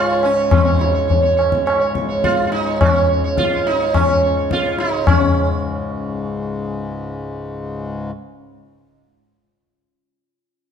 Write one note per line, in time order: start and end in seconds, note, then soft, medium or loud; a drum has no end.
0.00 5.06 C#2 medium
0.00 5.05 G#2 medium
0.00 0.24 F4 loud
0.08 0.35 C#5 soft
0.23 0.50 C#4 medium
0.23 tabla na medium
0.37 0.64 C#5 soft
0.51 1.34 C4 medium
0.51 tabla na loud
0.51 tabla ge loud
0.65 0.78 C#5 soft
0.79 0.93 C#5 soft
0.79 tabla te medium
0.94 1.06 C#5 soft
1.08 1.21 C#5 soft
1.08 tabla tin medium
1.08 tabla ge medium
1.22 1.35 C#5 soft
1.37 1.64 C#5 soft
1.37 tabla na medium
1.52 tabla ke medium
1.66 1.78 C#5 soft
1.66 tabla na medium
1.80 1.93 C#5 soft
1.94 2.07 C#5 soft
1.94 tabla ke medium
2.09 2.36 C#5 soft
2.24 2.46 F4 loud
2.24 tabla ke medium
2.47 2.52 F4 medium
2.52 2.80 D#4 medium
2.52 tabla te medium
2.66 2.93 C#5 soft
2.81 3.07 C#4 medium
2.81 tabla na loud
2.81 tabla ge loud
2.95 3.08 C#5 soft
3.09 3.23 C#5 soft
3.24 3.50 C#5 soft
3.38 3.67 F4 loud
3.38 tabla ke medium
3.53 3.79 C#5 soft
3.67 3.95 D#4 loud
3.67 tabla te medium
3.81 4.07 C#5 soft
3.94 4.21 C#4 medium
3.94 tabla na loud
3.94 tabla ge loud
4.08 4.22 C#5 soft
4.23 4.36 C#5 soft
4.37 4.63 C#5 soft
4.51 4.78 F4 loud
4.51 tabla ke medium
4.66 4.91 C#5 soft
4.79 5.08 D#4 loud
4.79 tabla te medium
4.93 5.19 C#5 soft
5.07 8.11 C#2 medium
5.07 8.11 G#2 medium
5.07 8.41 C#4 medium
5.07 tabla na loud
5.07 tabla ge loud